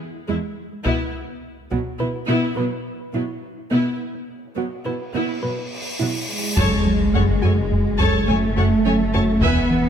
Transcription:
0.28 0.37 E2 soft
0.28 0.36 G#3 soft
0.28 0.46 G#3 medium
0.28 0.36 E4 soft
0.85 0.94 B2 medium
0.85 1.12 B3 medium
0.85 1.03 B3 medium
0.85 1.12 E4 medium
0.85 taiko medium
1.71 1.79 B2 soft
1.71 1.79 F#3 soft
1.71 1.79 B3 soft
1.71 1.89 F#4 medium
1.71 taiko soft
1.99 2.08 B2 soft
1.99 2.08 B3 soft
1.99 2.07 E4 soft
1.99 2.17 B4 medium
2.28 2.37 B2 medium
2.28 2.55 B3 medium
2.28 2.46 B3 medium
2.28 2.55 E4 medium
2.56 2.65 B2 soft
2.56 2.64 F#3 soft
2.56 2.64 B3 soft
2.56 2.74 B4 medium
3.13 3.23 B2 soft
3.13 3.22 F#3 soft
3.13 3.21 B3 soft
3.13 3.32 E4 medium
3.71 3.80 B2 soft
3.71 3.98 B3 soft
3.71 3.88 B3 medium
3.71 3.98 E4 soft
3.71 cymbal swell medium
4.56 4.65 B2 soft
4.56 4.64 F#3 soft
4.56 4.64 B3 soft
4.56 4.75 F#4 soft
4.85 4.94 B2 soft
4.85 4.93 B3 soft
4.85 4.93 E4 soft
4.85 5.03 B4 medium
5.14 5.23 B2 soft
5.14 5.41 B3 medium
5.14 5.32 B3 medium
5.14 5.41 E4 soft
5.42 5.52 B2 soft
5.42 5.50 F#3 soft
5.42 5.50 B3 soft
5.42 5.60 B4 soft
6.00 6.08 B2 soft
6.00 6.09 F#3 soft
6.00 6.09 B3 soft
6.00 6.17 E4 medium
6.28 8.24 G#3 soft
6.28 8.25 G#3 medium
6.57 9.44 F#1 medium
6.57 6.74 F#2 medium
6.57 6.66 F#2 medium
6.57 6.74 F#3 medium
6.57 6.84 A4 soft
6.57 6.84 C#5 medium
6.57 6.84 A5 medium
6.57 taiko medium
6.57 sub drop medium
6.87 7.04 F#3 medium
7.13 7.32 F#2 medium
7.13 7.24 F#2 soft
7.13 7.31 A3 medium
7.13 7.24 A4 soft
7.13 7.24 C#5 soft
7.13 7.22 F#5 soft
7.42 7.52 F#2 soft
7.42 7.61 F#2 medium
7.42 7.60 F#4 medium
7.42 7.52 A4 soft
7.42 7.53 C#5 soft
7.42 7.51 G#5 soft
7.72 7.89 F#2 medium
7.99 8.17 F#2 medium
7.99 8.09 F#2 medium
7.99 8.17 F#3 medium
7.99 8.27 A4 medium
7.99 8.27 C#5 medium
7.99 8.26 A5 medium
7.99 taiko medium
8.28 8.46 F#2 medium
8.28 8.38 F#2 soft
8.28 8.45 A3 medium
8.28 9.40 A3 medium
8.28 9.41 A3 medium
8.28 8.37 A4 soft
8.28 8.37 C#5 soft
8.28 8.36 G#5 soft
8.57 8.75 F#2 medium
8.57 8.66 F#2 soft
8.57 8.74 F#4 soft
8.57 8.65 A4 soft
8.57 8.65 C#5 soft
8.57 8.66 F#5 soft
8.86 8.94 F#2 soft
8.86 9.04 F#3 medium
8.86 9.03 C#4 medium
8.86 8.94 A4 soft
8.86 8.94 C#5 soft
8.86 8.94 G#5 soft
9.14 9.23 F#2 soft
9.14 9.32 F#2 medium
9.14 9.32 F#4 soft
9.14 9.22 A4 soft
9.14 9.22 C#5 soft
9.14 9.22 A5 medium
9.42 9.89 E1 medium
9.42 9.60 E2 medium
9.42 9.51 E2 medium
9.42 9.60 E3 medium
9.42 9.89 B3 medium
9.42 9.70 B4 medium
9.42 9.70 E5 soft
9.42 9.70 E5 medium
9.42 9.69 G#5 soft
9.42 taiko medium
9.71 9.88 E3 medium

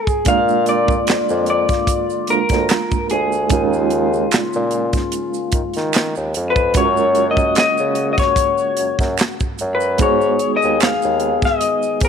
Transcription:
0.00 0.21 G#3 medium
0.00 0.22 B3 medium
0.00 0.23 D#4 medium
0.00 0.23 F#4 medium
0.00 0.24 G#4 medium
0.00 0.08 A#4 medium
0.07 0.30 G#4 medium
0.07 kick medium
0.07 shaker soft
0.25 1.04 A#2 loud
0.25 3.06 D3 medium
0.25 2.24 G#3 medium
0.25 2.25 A#3 medium
0.25 3.06 A#3 medium
0.25 2.25 D4 medium
0.25 3.06 F4 medium
0.25 2.26 F4 medium
0.25 0.68 F5 loud
0.25 kick loud
0.25 closed hi-hat medium
0.25 shaker medium
0.29 2.26 A#4 medium
0.49 shaker soft
0.66 1.49 D5 loud
0.66 closed hi-hat medium
0.66 shaker soft
0.88 kick medium
0.88 shaker soft
1.07 1.17 F2 soft
1.07 finger snap medium
1.07 snare loud
1.07 clap loud
1.07 closed hi-hat medium
1.07 shaker medium
1.29 1.67 F2 medium
1.29 shaker soft
1.46 2.32 D5 medium
1.46 closed hi-hat medium
1.69 kick medium
1.69 snare soft
1.69 closed hi-hat soft
1.69 shaker soft
1.87 kick medium
1.87 closed hi-hat medium
1.87 shaker medium
2.10 shaker soft
2.27 2.39 D2 soft
2.27 3.48 G#3 soft
2.27 3.51 A#3 soft
2.27 3.51 D4 soft
2.27 3.51 F4 soft
2.27 3.11 A#4 loud
2.27 3.52 A#4 medium
2.27 closed hi-hat medium
2.27 shaker soft
2.49 2.68 D2 medium
2.49 kick medium
2.49 snare soft
2.49 closed hi-hat soft
2.49 shaker soft
2.69 finger snap medium
2.69 snare loud
2.69 clap medium
2.69 closed hi-hat medium
2.69 shaker medium
2.91 kick medium
2.91 shaker soft
3.10 3.48 D2 medium
3.10 5.90 G#4 medium
3.10 closed hi-hat medium
3.10 shaker soft
3.32 shaker soft
3.49 4.28 D#2 loud
3.49 6.30 C#3 medium
3.49 6.70 G#3 medium
3.49 6.30 A#3 medium
3.49 6.70 C#4 medium
3.49 6.71 D#4 medium
3.49 6.30 F4 medium
3.49 6.72 F4 medium
3.49 kick loud
3.49 closed hi-hat medium
3.49 shaker medium
3.54 6.72 A#4 medium
3.73 shaker soft
3.90 closed hi-hat medium
3.90 shaker soft
4.13 shaker soft
4.31 4.42 A#2 soft
4.31 finger snap medium
4.31 snare loud
4.31 clap medium
4.31 closed hi-hat medium
4.31 shaker medium
4.53 4.91 A#2 medium
4.53 shaker soft
4.71 closed hi-hat medium
4.71 shaker soft
4.93 kick medium
4.93 snare soft
4.93 closed hi-hat soft
4.93 shaker soft
5.12 closed hi-hat medium
5.12 shaker medium
5.34 shaker soft
5.52 5.62 D#3 soft
5.52 kick medium
5.52 closed hi-hat medium
5.52 shaker soft
5.74 6.13 D#3 medium
5.74 snare soft
5.74 closed hi-hat soft
5.74 shaker soft
5.93 finger snap medium
5.93 snare loud
5.93 clap medium
5.93 closed hi-hat medium
5.93 shaker medium
6.15 6.33 D#2 medium
6.15 shaker soft
6.34 6.72 F2 medium
6.34 closed hi-hat medium
6.34 shaker soft
6.50 6.74 B4 medium
6.56 kick medium
6.56 shaker soft
6.74 7.52 F#2 loud
6.74 9.54 C#3 medium
6.74 9.94 G#3 medium
6.74 9.54 A#3 medium
6.74 9.95 C#4 medium
6.74 9.96 F4 medium
6.74 9.54 F#4 medium
6.74 9.96 F#4 medium
6.74 7.30 C#5 loud
6.74 kick loud
6.74 closed hi-hat medium
6.74 shaker medium
6.79 6.83 G#4 medium
6.85 10.00 A#4 medium
6.97 shaker soft
7.15 closed hi-hat medium
7.15 shaker soft
7.31 7.57 D#5 medium
7.37 kick medium
7.37 shaker soft
7.55 7.66 C#3 soft
7.55 8.12 D#5 loud
7.55 finger snap medium
7.55 snare loud
7.55 clap medium
7.55 closed hi-hat medium
7.55 shaker medium
7.78 8.16 C#3 medium
7.78 shaker soft
7.95 closed hi-hat medium
8.13 8.19 D#5 medium
8.18 8.96 C#5 medium
8.18 kick medium
8.18 snare soft
8.18 closed hi-hat soft
8.18 shaker soft
8.36 kick loud
8.36 closed hi-hat medium
8.36 shaker medium
8.58 shaker soft
8.77 8.87 F#2 soft
8.77 closed hi-hat medium
8.77 shaker soft
8.99 9.17 F#2 medium
8.99 kick medium
8.99 snare soft
8.99 shaker soft
9.18 finger snap medium
9.18 snare loud
9.18 clap medium
9.18 closed hi-hat medium
9.18 shaker medium
9.40 kick medium
9.40 shaker soft
9.58 9.97 F#2 medium
9.58 closed hi-hat medium
9.58 shaker soft
9.75 9.98 B4 medium
9.80 shaker soft
9.98 10.37 G#2 loud
9.98 12.09 D#3 medium
9.98 12.09 G#3 medium
9.98 12.09 B3 medium
9.98 12.09 D#4 medium
9.98 12.09 F#4 medium
9.98 12.09 G#4 medium
9.98 kick loud
9.98 closed hi-hat medium
9.98 shaker medium
10.02 12.09 G#4 medium
10.02 10.51 C#5 medium
10.21 shaker soft
10.39 closed hi-hat medium
10.39 shaker soft
10.56 10.82 D#5 medium
10.62 10.80 D#2 medium
10.62 shaker soft
10.80 10.91 D#2 soft
10.80 11.45 F5 medium
10.80 finger snap medium
10.80 snare loud
10.80 clap medium
10.80 closed hi-hat medium
10.80 shaker medium
11.02 11.40 D#2 medium
11.02 shaker medium
11.20 closed hi-hat medium
11.42 11.99 D#5 medium
11.42 kick medium
11.42 snare soft
11.42 shaker soft
11.61 closed hi-hat medium
11.61 shaker medium
11.83 shaker soft
12.00 12.09 G#2 soft
12.00 kick medium
12.00 closed hi-hat medium
12.00 shaker soft
12.05 12.09 A#4 medium

